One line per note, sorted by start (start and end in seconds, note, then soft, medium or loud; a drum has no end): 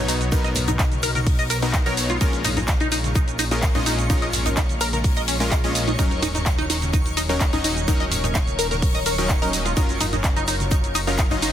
0.00 2.19 B1 medium
0.00 0.29 B2 medium
0.00 0.29 F#3 medium
0.00 0.29 B3 medium
0.00 0.29 D#4 medium
0.00 0.29 C#5 medium
0.00 11.52 C#5 medium
0.00 11.52 C#6 medium
0.00 impact medium
0.08 0.16 D#4 medium
0.08 snare medium
0.08 open hi-hat loud
0.08 shaker medium
0.21 closed hi-hat soft
0.21 shaker soft
0.32 1.60 B2 medium
0.32 1.60 F#3 medium
0.32 1.60 B3 medium
0.32 0.35 D#4 medium
0.32 1.60 D#4 medium
0.32 1.60 A#4 loud
0.32 kick loud
0.32 closed hi-hat medium
0.32 shaker loud
0.32 shaker soft
0.44 0.49 D#5 medium
0.44 snare soft
0.44 closed hi-hat soft
0.44 high bongo medium
0.44 shaker soft
0.55 open hi-hat loud
0.55 low conga medium
0.55 shaker medium
0.68 0.71 D#4 medium
0.68 closed hi-hat soft
0.68 low conga loud
0.68 shaker soft
0.79 0.82 D#4 loud
0.79 kick loud
0.79 snare loud
0.79 clap loud
0.79 closed hi-hat medium
0.79 shaker medium
0.79 shaker soft
0.92 closed hi-hat soft
0.92 high conga medium
0.92 shaker soft
1.03 1.11 A#4 loud
1.03 open hi-hat loud
1.03 shaker medium
1.15 1.20 A#4 medium
1.15 snare medium
1.15 closed hi-hat soft
1.15 high conga medium
1.15 shaker soft
1.26 kick loud
1.26 closed hi-hat medium
1.26 open hi-hat medium
1.26 shaker soft
1.39 1.44 D#5 medium
1.39 closed hi-hat soft
1.39 shaker soft
1.50 1.58 A#4 medium
1.50 open hi-hat loud
1.50 shaker medium
1.62 1.83 B2 medium
1.62 1.83 F#3 medium
1.62 1.83 B3 medium
1.62 1.83 D#4 medium
1.62 1.83 A#4 medium
1.62 snare medium
1.62 closed hi-hat soft
1.62 shaker soft
1.73 1.79 D#4 medium
1.73 kick loud
1.73 snare loud
1.73 clap loud
1.73 closed hi-hat medium
1.73 shaker medium
1.73 shaker soft
1.86 2.18 B2 medium
1.86 2.18 F#3 medium
1.86 2.18 B3 medium
1.86 2.18 D#4 medium
1.86 1.93 A#4 loud
1.86 2.18 C#5 medium
1.86 snare soft
1.86 closed hi-hat soft
1.86 shaker soft
1.97 open hi-hat loud
1.97 shaker medium
2.09 2.17 F4 medium
2.09 closed hi-hat soft
2.09 high bongo medium
2.09 shaker soft
2.21 5.97 A#1 medium
2.21 3.49 A#2 medium
2.21 3.49 G#3 medium
2.21 3.49 C#4 medium
2.21 2.24 D#4 medium
2.21 3.49 F4 medium
2.21 3.49 A#4 loud
2.21 kick loud
2.21 closed hi-hat medium
2.21 shaker medium
2.21 shaker soft
2.33 closed hi-hat soft
2.33 high bongo medium
2.33 shaker soft
2.45 2.50 D#4 loud
2.45 open hi-hat loud
2.45 low conga medium
2.45 shaker medium
2.57 2.60 D#4 medium
2.57 snare soft
2.57 closed hi-hat soft
2.57 low conga loud
2.57 shaker soft
2.68 kick loud
2.68 snare loud
2.68 clap loud
2.68 closed hi-hat medium
2.68 shaker loud
2.68 shaker soft
2.80 2.88 D#4 loud
2.80 closed hi-hat soft
2.80 high conga medium
2.80 shaker soft
2.92 3.00 D#4 medium
2.92 open hi-hat loud
2.92 shaker medium
3.04 snare soft
3.04 closed hi-hat soft
3.04 high conga medium
3.04 shaker soft
3.15 3.19 D#4 medium
3.15 kick loud
3.15 closed hi-hat medium
3.15 shaker medium
3.15 shaker soft
3.28 closed hi-hat soft
3.28 shaker soft
3.39 3.44 D#4 loud
3.39 open hi-hat loud
3.39 shaker medium
3.51 3.72 A#2 medium
3.51 3.72 G#3 medium
3.51 3.72 C#4 medium
3.51 3.54 D#4 medium
3.51 3.72 F4 medium
3.51 3.72 A#4 medium
3.51 snare medium
3.51 closed hi-hat soft
3.51 shaker soft
3.62 kick loud
3.62 snare loud
3.62 clap loud
3.62 closed hi-hat medium
3.62 shaker medium
3.62 shaker soft
3.75 4.07 A#2 medium
3.75 4.07 G#3 medium
3.75 4.07 C#4 medium
3.75 3.80 D#4 medium
3.75 4.07 F4 medium
3.75 4.07 D#5 medium
3.75 closed hi-hat soft
3.75 low conga medium
3.75 shaker soft
3.86 3.94 D#4 medium
3.86 snare medium
3.86 open hi-hat loud
3.86 shaker medium
3.99 closed hi-hat soft
3.99 shaker soft
4.10 5.37 A#2 medium
4.10 5.37 G#3 medium
4.10 5.37 C#4 medium
4.10 4.13 D#4 medium
4.10 5.37 F4 medium
4.10 5.37 A#4 loud
4.10 kick loud
4.10 closed hi-hat medium
4.10 shaker loud
4.10 shaker soft
4.22 4.27 D#5 medium
4.22 snare soft
4.22 closed hi-hat soft
4.22 high bongo medium
4.22 shaker soft
4.33 open hi-hat loud
4.33 low conga medium
4.33 shaker medium
4.46 4.49 D#4 medium
4.46 closed hi-hat soft
4.46 low conga medium
4.46 shaker soft
4.57 4.60 D#4 loud
4.57 kick loud
4.57 snare loud
4.57 clap loud
4.57 closed hi-hat medium
4.57 shaker medium
4.57 shaker soft
4.69 closed hi-hat soft
4.69 high conga medium
4.69 shaker soft
4.81 4.89 A#4 loud
4.81 open hi-hat loud
4.81 shaker medium
4.93 4.98 A#4 medium
4.93 snare medium
4.93 closed hi-hat soft
4.93 high conga medium
4.93 shaker soft
5.04 kick loud
5.04 closed hi-hat medium
5.04 open hi-hat medium
5.04 shaker soft
5.17 5.22 D#5 medium
5.17 closed hi-hat soft
5.17 shaker soft
5.28 5.36 C#4 medium
5.28 open hi-hat loud
5.28 shaker medium
5.40 5.61 A#2 medium
5.40 5.61 G#3 medium
5.40 5.61 C#4 medium
5.40 5.61 F4 medium
5.40 5.61 A#4 medium
5.40 snare medium
5.40 closed hi-hat soft
5.40 shaker soft
5.51 5.55 D#5 loud
5.51 kick loud
5.51 snare loud
5.51 clap loud
5.51 closed hi-hat medium
5.51 shaker medium
5.51 shaker soft
5.64 5.96 A#2 medium
5.64 5.96 G#3 medium
5.64 5.96 C#4 medium
5.64 5.71 C#4 medium
5.64 5.96 F4 medium
5.64 5.96 D#5 medium
5.64 snare soft
5.64 closed hi-hat soft
5.64 shaker soft
5.75 open hi-hat loud
5.75 shaker medium
5.88 5.91 D#4 medium
5.88 closed hi-hat soft
5.88 high bongo medium
5.88 shaker soft
5.99 9.75 D#1 medium
5.99 7.26 F#3 medium
5.99 7.26 C#4 medium
5.99 7.26 D#4 medium
5.99 6.02 D#4 medium
5.99 7.26 A#4 loud
5.99 kick loud
5.99 closed hi-hat medium
5.99 shaker medium
5.99 shaker soft
6.11 closed hi-hat soft
6.11 high bongo medium
6.11 shaker soft
6.22 6.28 D#4 loud
6.22 open hi-hat loud
6.22 low conga medium
6.22 shaker medium
6.35 6.38 D#4 medium
6.35 snare soft
6.35 closed hi-hat soft
6.35 low conga medium
6.35 shaker soft
6.46 kick loud
6.46 snare loud
6.46 clap loud
6.46 closed hi-hat medium
6.46 shaker medium
6.46 shaker soft
6.58 6.66 D#4 loud
6.58 closed hi-hat soft
6.58 high conga medium
6.58 shaker soft
6.70 6.78 D#4 medium
6.70 open hi-hat loud
6.70 shaker medium
6.82 snare soft
6.82 closed hi-hat soft
6.82 high conga medium
6.82 shaker soft
6.93 6.97 D#4 medium
6.93 kick loud
6.93 closed hi-hat medium
6.93 shaker medium
6.93 shaker soft
7.06 closed hi-hat soft
7.06 shaker soft
7.17 7.22 D#4 loud
7.17 open hi-hat loud
7.17 shaker medium
7.29 7.50 F#3 medium
7.29 7.50 C#4 medium
7.29 7.32 D#4 medium
7.29 7.50 D#4 medium
7.29 7.50 A#4 medium
7.29 snare soft
7.29 closed hi-hat soft
7.29 shaker soft
7.40 7.46 D#4 medium
7.40 kick loud
7.40 snare loud
7.40 clap loud
7.40 closed hi-hat medium
7.40 shaker medium
7.40 shaker soft
7.53 7.85 F#3 medium
7.53 7.85 C#4 medium
7.53 7.58 D#4 medium
7.53 7.85 D#4 medium
7.53 7.85 D#5 medium
7.53 closed hi-hat soft
7.53 low conga medium
7.53 shaker soft
7.64 7.72 D#4 medium
7.64 snare medium
7.64 open hi-hat loud
7.64 shaker medium
7.77 closed hi-hat soft
7.77 shaker soft
7.88 9.15 F#3 medium
7.88 9.15 C#4 medium
7.88 7.91 D#4 medium
7.88 9.15 D#4 medium
7.88 9.15 A#4 loud
7.88 kick loud
7.88 closed hi-hat medium
7.88 shaker loud
7.88 shaker soft
8.00 8.05 D#5 medium
8.00 snare soft
8.00 closed hi-hat soft
8.00 high bongo medium
8.00 shaker soft
8.11 open hi-hat loud
8.11 low conga medium
8.11 shaker medium
8.24 8.27 D#4 medium
8.24 closed hi-hat soft
8.24 low conga medium
8.24 shaker soft
8.35 8.38 D#4 loud
8.35 kick loud
8.35 snare loud
8.35 clap loud
8.35 closed hi-hat medium
8.35 shaker medium
8.35 shaker soft
8.47 closed hi-hat soft
8.47 high conga medium
8.47 shaker soft
8.59 8.67 A#4 loud
8.59 open hi-hat loud
8.59 shaker medium
8.71 8.76 A#4 medium
8.71 snare medium
8.71 closed hi-hat soft
8.71 high conga medium
8.71 shaker soft
8.82 kick loud
8.82 closed hi-hat medium
8.82 open hi-hat medium
8.82 shaker soft
8.95 9.00 D#5 medium
8.95 closed hi-hat soft
8.95 shaker soft
9.06 9.14 A#4 medium
9.06 open hi-hat loud
9.06 shaker medium
9.18 9.39 F#3 medium
9.18 9.39 C#4 medium
9.18 9.39 D#4 medium
9.18 9.39 A#4 medium
9.18 snare medium
9.18 closed hi-hat soft
9.18 shaker soft
9.29 9.35 D#4 medium
9.29 kick loud
9.29 snare loud
9.29 clap loud
9.29 closed hi-hat medium
9.29 shaker medium
9.29 shaker soft
9.41 9.74 F#3 medium
9.41 9.74 C#4 medium
9.41 9.74 D#4 medium
9.41 9.49 A#4 loud
9.41 9.74 D#5 medium
9.41 snare soft
9.41 closed hi-hat soft
9.41 shaker soft
9.53 open hi-hat loud
9.53 shaker medium
9.66 9.73 F4 medium
9.66 closed hi-hat soft
9.66 high bongo medium
9.66 shaker soft
9.77 11.52 F#1 medium
9.77 11.04 F#3 medium
9.77 11.04 C#4 medium
9.77 9.80 D#4 medium
9.77 11.04 F4 medium
9.77 11.04 A#4 loud
9.77 kick loud
9.77 closed hi-hat medium
9.77 shaker medium
9.77 shaker soft
9.89 closed hi-hat soft
9.89 high bongo medium
9.89 shaker soft
10.01 10.06 D#4 loud
10.01 open hi-hat loud
10.01 low conga medium
10.01 shaker medium
10.12 10.16 D#4 medium
10.12 snare soft
10.12 closed hi-hat soft
10.12 low conga medium
10.12 shaker soft
10.23 kick loud
10.23 snare loud
10.23 clap loud
10.23 closed hi-hat loud
10.23 shaker medium
10.23 shaker soft
10.36 10.44 D#4 loud
10.36 closed hi-hat soft
10.36 high conga medium
10.36 shaker soft
10.48 10.56 D#4 medium
10.48 open hi-hat loud
10.48 shaker medium
10.60 snare soft
10.60 closed hi-hat soft
10.60 high conga medium
10.60 shaker soft
10.71 10.75 D#4 medium
10.71 kick loud
10.71 closed hi-hat loud
10.71 shaker medium
10.71 shaker soft
10.84 closed hi-hat soft
10.84 shaker soft
10.95 11.00 D#4 loud
10.95 open hi-hat loud
10.95 shaker medium
11.07 11.28 F#3 medium
11.07 11.28 C#4 medium
11.07 11.10 D#4 medium
11.07 11.28 F4 medium
11.07 11.28 A#4 medium
11.07 snare medium
11.07 closed hi-hat soft
11.07 shaker soft
11.18 11.24 D#4 medium
11.18 kick loud
11.18 snare loud
11.18 clap loud
11.18 closed hi-hat loud
11.18 shaker medium
11.18 shaker soft
11.30 11.52 F#3 medium
11.30 11.52 C#4 medium
11.30 11.36 D#4 medium
11.30 11.52 F4 medium
11.30 11.52 D#5 medium
11.30 closed hi-hat soft
11.30 low conga medium
11.30 shaker soft
11.42 11.50 D#4 medium
11.42 snare medium
11.42 open hi-hat loud
11.42 shaker medium